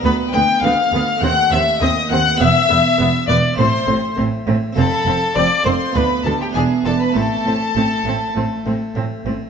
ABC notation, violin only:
X:1
M:4/4
L:1/16
Q:1/4=101
K:Am
V:1 name="Violin"
B2 g2 f4 ^f2 e2 ^d2 f2 | e6 d2 c4 z4 | A4 d2 c2 B2 A G ^G2 A B | A12 z4 |]